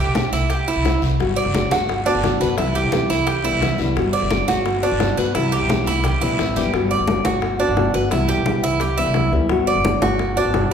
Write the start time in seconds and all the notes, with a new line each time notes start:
Already playing: G4
0.07 B1
0.15 high bongo, high conga, short guiro
0.32 C2 E4, high bongo, high conga, short guiro
0.50 G4, high bongo, high conga, long guiro
0.68 E4, high bongo
0.76 C2
0.85 high bongo, low bongo, high conga, short guiro
1.02 C2, high conga, short guiro
1.19 G1 G3 B3 F#4, high bongo, high conga, long guiro
1.36 D5, high conga
1.45 F#1
1.53 G3 B3 F#4, high bongo, high conga, short guiro
1.71 G1 F#4, high conga, short guiro
1.88 muted nylon-string guitar stroke, high bongo, high conga, long guiro
2.06 B3 D4 F#4, high conga
2.15 G1
2.23 G3 B3 F#4, high bongo, low bongo, high conga, short guiro
2.40 G1 B3 F#4 B4, high conga, short guiro
2.57 C2 C3 E3 G3 B3 E4, high bongo, high conga, long guiro
2.75 G4, high bongo, high conga
2.84 B1
2.92 E3 G3 B3 E4, high bongo, high conga, short guiro
3.10 C2 E4, high bongo, high conga, short guiro
3.27 G4, muted nylon-string guitar stroke, high bongo, high conga, long guiro
3.44 E3 G3 B3 E4, high bongo, high conga
3.53 C2
3.61 E3 G3 B3 E4, high bongo, low bongo, high conga, short guiro
3.78 C2 E3 G3 B3 E4, high conga, short guiro
3.96 G1 G3 B3 F#4, high bongo, high conga, long guiro
4.13 D5, high conga
4.22 F#1
4.30 G3 B3 F#4, high bongo, high conga, short guiro
4.48 G1 F#4, high conga, short guiro
4.65 muted nylon-string guitar stroke, high bongo, high conga, long guiro
4.83 B3 D4 F#4, high conga
4.92 G1
5.00 G3 B3 F#4, high bongo, low bongo, high conga, short guiro
5.17 G1 B3 F#4 B4, high conga, short guiro
5.35 C2 C3 E3 G3 B3 E4, high bongo, high conga, long guiro
5.52 G4, high bongo, high conga
5.61 B1
5.69 E3 G3 B3 E4, high bongo, high conga, short guiro
5.86 C2 E4, high bongo, high conga, short guiro
6.04 G4, muted nylon-string guitar stroke, high bongo, high conga, long guiro
6.21 B1 E3 G3 B3 E4, high bongo, low conga
6.38 A1 E3 G3 B3 E4, high bongo, low bongo, short guiro
6.56 G1 E3 G3 B3 E4 G4, low conga, short guiro
6.73 G1 G3 B3 F#4, high bongo, high conga
6.90 D5, high conga
7.00 F#1
7.08 G3 B3 F#4, high bongo, high conga
7.25 G1 F#4, high conga
7.42 muted nylon-string guitar stroke, high bongo, high conga
7.59 B3 D4 F#4, high conga
7.69 G1
7.76 G3 B3 F#4, high bongo, low bongo, high conga
7.94 G1 B3 F#4 B4, high conga
8.11 C2 C3 E3 G3 B3 E4, high bongo, high conga
8.29 G4, high bongo
8.37 B1
8.45 E3 G3 B3 E4, high bongo, high conga
8.63 C2 E4, high bongo, high conga
8.80 G4, muted nylon-string guitar stroke, high bongo, high conga
8.98 E3 G3 B3 E4, high bongo, high conga
9.06 C2
9.14 E3 G3 B3 E4, high bongo, low bongo, high conga
9.32 D2 E3 G3 B3 E4, high conga
9.49 G1 G3 B3 F#4, high bongo, high conga
9.67 D5, high conga
9.75 F#1
9.84 G3 B3 F#4, high bongo, high conga
10.01 G1 F#4, high conga
10.19 muted nylon-string guitar stroke, high bongo, high conga
10.36 B3 D4 F#4, high conga
10.45 G1
10.54 G3 B3 F#4, high bongo, low bongo, high conga